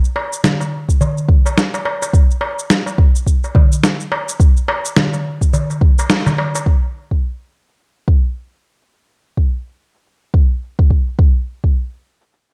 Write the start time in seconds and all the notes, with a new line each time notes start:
0.04 cabasa
0.16 darbuka tek
0.33 cabasa
0.44 snare, darbuka dum, cabasa
0.60 darbuka ka, cabasa
0.89 kick, cabasa
1.01 darbuka dum, cabasa
1.17 cabasa
1.28 kick
1.46 darbuka ka, darbuka tek, cabasa
1.58 snare, cabasa
1.74 darbuka ka, cabasa
1.85 darbuka tek
2.02 darbuka ka, cabasa
2.13 kick, cabasa
2.31 cabasa
2.41 darbuka tek
2.59 cabasa
2.70 snare, cabasa
2.86 darbuka ka, cabasa
2.98 kick
3.15 cabasa
3.27 kick, cabasa
3.44 darbuka tek, cabasa
3.55 kick, darbuka dum
3.72 cabasa
3.84 snare, cabasa
4.00 cabasa
4.12 darbuka tek
4.29 cabasa
4.40 kick, cabasa
4.57 cabasa
4.68 darbuka tek
4.85 cabasa
4.96 snare, darbuka dum, cabasa
5.13 darbuka ka, cabasa
5.41 kick, cabasa
5.53 darbuka dum, cabasa
5.70 darbuka ka, cabasa
5.81 kick
5.98 darbuka ka, darbuka tek, cabasa
6.10 snare, cabasa
6.26 darbuka ka, darbuka dum, cabasa
6.38 darbuka tek
6.55 darbuka ka, cabasa
6.66 kick
6.83 cabasa
7.11 kick, cabasa
7.23 cabasa
7.40 cabasa
7.68 cabasa
7.80 cabasa
7.97 cabasa
8.08 kick
8.25 cabasa
8.37 cabasa
8.53 cabasa
8.82 cabasa
8.93 cabasa
9.10 cabasa
9.37 kick, cabasa
9.49 cabasa
9.67 cabasa
9.94 cabasa
10.06 cabasa
10.23 cabasa
10.34 kick
10.51 cabasa
10.63 cabasa
10.79 kick
10.90 kick
11.08 cabasa
11.19 kick, cabasa
11.36 cabasa
11.64 kick, cabasa
11.76 cabasa
11.93 cabasa
12.21 cabasa
12.33 cabasa
12.50 cabasa